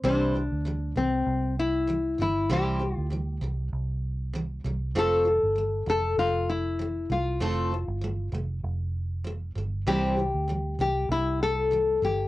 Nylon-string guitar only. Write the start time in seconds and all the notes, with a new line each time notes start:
0.05 D4
0.97 C4
1.59 E4
2.21 E4
2.52 G4
2.95 F4
4.98 A4
5.90 A4
6.19 F4
6.50 E4
7.12 F4
9.88 G4
10.81 G4
11.12 E4
11.43 A4
12.04 G4